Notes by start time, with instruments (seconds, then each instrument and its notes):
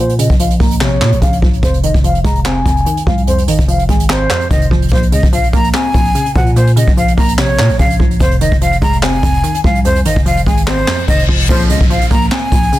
Already playing: 808-style bass A#2, synth pluck C#3 F3 C4
0.00 synth pluck A#2, flute C5
0.09 closed hi-hat
0.19 synth pluck C#3, flute D#5, closed hi-hat
0.30 808-style bass A#1, kick, closed hi-hat
0.40 synth pluck F3, flute F5, closed hi-hat
0.50 closed hi-hat
0.60 808-style bass A#1, synth pluck A#3, flute A#5, kick, open hi-hat
0.71 closed hi-hat
0.81 synth pluck C3, flute C#5, snare, clap
1.01 808-style bass A#2, synth pluck A#2, snare, clap
1.12 808-style bass A#1, closed hi-hat
1.22 808-style bass A#1, synth pluck C#3, flute F5, kick, closed hi-hat
1.33 closed hi-hat
1.42 808-style bass A#1, synth pluck F3, kick
1.53 closed hi-hat
1.63 808-style bass F1, synth pluck F2, flute C5, kick, closed hi-hat
1.74 closed hi-hat
1.83 synth pluck D#3, flute D#5, closed hi-hat
1.94 808-style bass F1, kick, closed hi-hat
2.04 synth pluck F3, flute F5, closed hi-hat
2.15 closed hi-hat
2.24 808-style bass F1, synth pluck G#3, flute A#5, kick, closed hi-hat
2.36 closed hi-hat
2.45 synth pluck C4, flute G#5, snare, clap
2.66 808-style bass F1, synth pluck F2, kick, closed hi-hat
2.77 closed hi-hat
2.86 synth pluck D#3, closed hi-hat
2.97 closed hi-hat
3.07 808-style bass C2, synth pluck F3, flute F5, kick
3.18 closed hi-hat
3.27 synth pluck F2, flute C5, closed hi-hat
3.38 closed hi-hat
3.48 808-style bass G#1, synth pluck D#3, flute D#5, closed hi-hat
3.59 808-style bass F1, kick, closed hi-hat
3.68 synth pluck F3, flute F5, closed hi-hat
3.79 closed hi-hat
3.89 808-style bass G#1, synth pluck G#3, flute G#5, kick, closed hi-hat
4.00 closed hi-hat
4.09 synth pluck C4, flute C5, snare, clap
4.30 synth pluck F2, snare, clap
4.41 closed hi-hat
4.50 808-style bass F1, synth pluck D#3, flute D#5, kick, closed hi-hat
4.61 closed hi-hat
4.71 808-style bass F1, synth pluck F3, kick
4.82 closed hi-hat
4.88 808-style bass A#1, synth pluck A#2, flute C5, kick, closed hi-hat
4.95 closed hi-hat
5.03 closed hi-hat
5.12 808-style bass C#2, synth pluck C#3, flute D#5, closed hi-hat
5.23 808-style bass A#1, kick, closed hi-hat
5.33 synth pluck F3, flute F5, closed hi-hat
5.44 closed hi-hat
5.53 808-style bass A#1, synth pluck A#3, flute A#5, kick, closed hi-hat
5.64 closed hi-hat
5.74 synth pluck C4, flute G#5, snare, clap
5.94 808-style bass A#1, synth pluck A#2, kick, closed hi-hat
6.05 closed hi-hat
6.15 synth pluck C#3, closed hi-hat
6.26 closed hi-hat
6.35 808-style bass A#2, synth pluck F3, flute F#5, kick
6.46 closed hi-hat
6.56 synth pluck A#2, flute C5, closed hi-hat
6.67 closed hi-hat
6.76 synth pluck C#3, flute D#5, closed hi-hat
6.88 808-style bass A#1, kick, closed hi-hat
6.97 synth pluck F3, flute F5, closed hi-hat
7.08 closed hi-hat
7.17 808-style bass A#1, synth pluck A#3, flute A#5, kick, open hi-hat
7.29 closed hi-hat
7.38 synth pluck C3, flute C#5, snare, clap
7.59 808-style bass A#2, synth pluck A#2, snare, clap
7.70 808-style bass A#1, closed hi-hat
7.79 808-style bass A#1, synth pluck C#3, flute F5, kick, closed hi-hat
7.90 closed hi-hat
7.99 808-style bass A#1, synth pluck F3, kick
8.11 closed hi-hat
8.20 808-style bass F1, synth pluck F2, flute C5, kick, closed hi-hat
8.31 closed hi-hat
8.41 synth pluck D#3, flute D#5, closed hi-hat
8.52 808-style bass F1, kick
8.61 synth pluck F3, flute F5, closed hi-hat
8.72 closed hi-hat
8.82 808-style bass F1, synth pluck G#3, flute A#5, kick, closed hi-hat
8.93 closed hi-hat
9.02 synth pluck C4, flute G#5, snare, clap
9.23 808-style bass F1, synth pluck F2, kick, closed hi-hat
9.34 closed hi-hat
9.44 synth pluck D#3, closed hi-hat
9.55 closed hi-hat
9.64 808-style bass C2, synth pluck F3, flute F5, kick
9.75 closed hi-hat
9.85 synth pluck F2, flute C5, closed hi-hat
9.96 closed hi-hat
10.05 808-style bass G#1, synth pluck D#3, flute D#5, closed hi-hat
10.16 808-style bass F1, kick
10.26 synth pluck F3, flute F5, closed hi-hat
10.37 closed hi-hat
10.46 808-style bass G#1, synth pluck G#3, flute G#5, kick, closed hi-hat
10.57 closed hi-hat
10.67 synth pluck C4, flute C5, snare, clap, reverse cymbal
10.88 synth pluck F2, snare, clap
10.98 closed hi-hat
11.08 808-style bass F1, synth pluck D#3, flute D#5, kick, closed hi-hat
11.19 closed hi-hat
11.29 808-style bass F1, synth pluck F3, kick
11.40 closed hi-hat
11.46 808-style bass A#1, brass ensemble F2 C#3 F3, synth pluck A#2, flute C5, kick, closed hi-hat, crash, downlifter
11.53 closed hi-hat
11.60 closed hi-hat
11.70 808-style bass C#2, synth pluck C#3, flute D#5, closed hi-hat
11.81 808-style bass A#1, kick, closed hi-hat
11.90 synth pluck F3, flute F5, closed hi-hat
12.01 closed hi-hat
12.11 808-style bass A#1, synth pluck A#3, flute A#5, kick, closed hi-hat
12.22 closed hi-hat
12.31 synth pluck C4, flute G#5, snare, clap
12.52 808-style bass A#1, synth pluck A#2, kick, closed hi-hat
12.63 closed hi-hat
12.72 synth pluck C#3, closed hi-hat